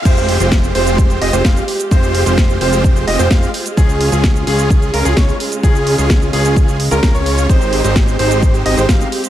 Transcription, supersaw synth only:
X:1
M:4/4
L:1/16
Q:1/4=129
K:Fm
V:1 name="Supersaw synth"
[A,CFGc]3 [A,CFGc]3 [A,CFGc]4 [A,CFGe] [A,CFGc] [A,CFGf]2 z2 | [A,CFGc]3 [A,CFGc]3 [A,CFGc]4 [A,CFGe] [A,CFGc] [A,CFGf]2 z2 | [DFA]3 [DFA]3 [DFA]4 [DFB] [DFA] [DFd]2 z2 | [DFA]3 [DFA]3 [DFA]4 z [DFB] [DFB] [DFd]3 |
[A,CEGc]3 [A,CEGc]3 [A,CEGc]4 [A,CEGe] [A,CEGc] [A,CEGf]2 z2 |]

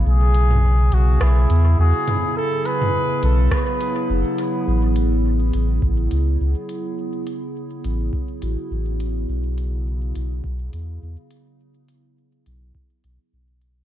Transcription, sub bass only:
X:1
M:4/4
L:1/8
Q:"Swing 16ths" 1/4=104
K:Alyd
V:1 name="Sub bass" clef=bass
B,,,3 B,,, B,,, E,, E,, z | z3 B,,, z2 F,,, z | A,,,3 A,,, A,,, C,, C,, z | z3 A,,, z A,,, A,,,2 |
B,,,3 B,,, B,,, E,, E,, z | z3 B,,, z B,,, B,,,2 |]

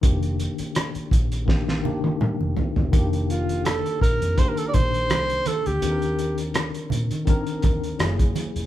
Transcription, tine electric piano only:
X:1
M:4/4
L:1/8
Q:"Swing 16ths" 1/4=83
K:Fmix
V:1 name="Tine electric piano"
[E,B,DG]3 z [E,B,DG] [E,B,DG]2 z | [E,B,DG]3 z [E,B,DG]3 z | [E,CDAB]3 z [E,CDB]2 [^F,A,^A,=E^G]2 |]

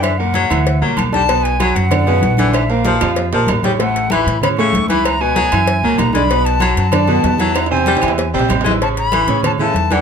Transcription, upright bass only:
X:1
M:4/4
L:1/8
Q:1/4=191
K:A
V:1 name="Upright bass" clef=bass
F,,3 D,,2 =C,, B,,,2- | B,,,3 F,,3 _B,,,2- | _B,,,3 =F,,2 B,,, A,,,2- | A,,,3 A,,3 C,,2- |
C,,3 F,,2 C,, B,,,2- | B,,,3 F,,3 E,,2- | E,,3 E,,2 _B,,, A,,,2- | A,,,3 A,,3 E,,2 |]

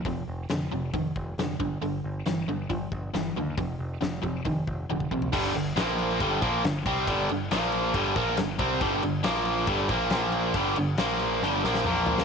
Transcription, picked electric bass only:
X:1
M:4/4
L:1/8
Q:1/4=138
K:Gm
V:1 name="Picked electric bass" clef=bass
F,,, F,,, F,,, F,,, F,,, F,,, F,,, G,,, | G,,, G,,, G,,, G,,, G,,, G,,, G,,, E,, | F,,, F,,, F,,, F,,, F,,, F,,, F,,, B,,, | G,,, G,,, B,,,2 G,,, B,,, G,,, C,, |
G,,, G,,, B,,,2 G,,, B,,, G,,, C,, | G,,, G,,, B,,,2 G,,, B,,, B,,,2 | G,,, G,,, B,,,2 G,,, B,,, B,,,2 |]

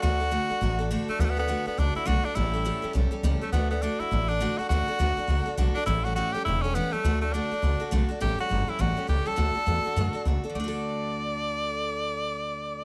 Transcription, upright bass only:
X:1
M:4/4
L:1/8
Q:"Swing" 1/4=205
K:D
V:1 name="Upright bass" clef=bass
D,,3 z A,,,3 z | D,,3 z C,, z B,,, z | A,,,3 z B,,, z C,, z | D,,3 z A,,,3 z |
D,, z D,, z C,, z B,,, z | A,,,3 z E,,,3 z | D,,3 z C,, z B,,, z | A,,, z G,,, z A,,, z C,, z |
D,, z E,, z F,, z C,, z | D,,8- | D,,8 |]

